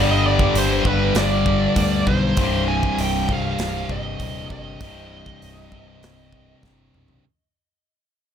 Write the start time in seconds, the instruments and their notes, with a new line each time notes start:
Already playing: picked electric bass G1, distorted electric guitar G2 D3, lead electric guitar D5
0.00 distorted electric guitar G3
0.11 lead electric guitar D#5
0.27 lead electric guitar D5
0.39 kick
0.54 picked electric bass G1, lead electric guitar C5, open hi-hat
0.85 picked electric bass G1, distorted electric guitar G2 D3 G3, lead electric guitar B4, kick
1.15 picked electric bass G1, lead electric guitar D5, snare, open hi-hat
1.46 kick
1.76 picked electric bass D2, kick, open hi-hat
2.07 picked electric bass B1, lead electric guitar C5, kick
2.37 picked electric bass C1, distorted electric guitar C2 G2 C3, kick, open hi-hat
2.68 lead electric guitar G#5
2.83 kick
2.98 picked electric bass C1, lead electric guitar G5, open hi-hat
3.28 picked electric bass C1, distorted electric guitar C2 G2 C3, lead electric guitar F5, kick
3.59 picked electric bass C1, snare, open hi-hat
3.89 picked electric bass G1, lead electric guitar D#5, kick
4.19 picked electric bass D#1, kick, open hi-hat
4.50 picked electric bass G1, lead electric guitar D#5, kick
4.80 picked electric bass C1, distorted electric guitar C2 G2 C3, kick, open hi-hat
5.26 kick
5.42 picked electric bass C1, open hi-hat
5.72 picked electric bass C1, distorted electric guitar C2 G2 C3, kick
6.03 picked electric bass C1, snare, open hi-hat
6.32 kick
6.63 picked electric bass G1, kick, snare
6.94 picked electric bass B1, mid tom
7.08 floor tom